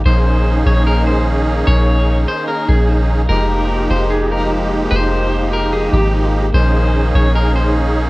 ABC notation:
X:1
M:4/4
L:1/8
Q:1/4=148
K:Bbdor
V:1 name="Clean electric guitar"
c3 d B c z2 | d3 c B A z2 | B3 c A B z2 | c3 B A G z2 |
c3 d B c z2 |]
V:2 name="Accordion"
[E,B,DEA]8- | [E,B,DEA]8 | [F,A,EG]8- | [F,A,EG]8 |
[E,DEA]8 |]
V:3 name="808-style bass" clef=bass
B,,,3 B,,,4- B,,, | B,,,3 z2 B,,,3 | F,,,3 F,,,4- F,,, | F,,,4- F,,, A,,,3 |
B,,,3 B,,,4- B,,, |]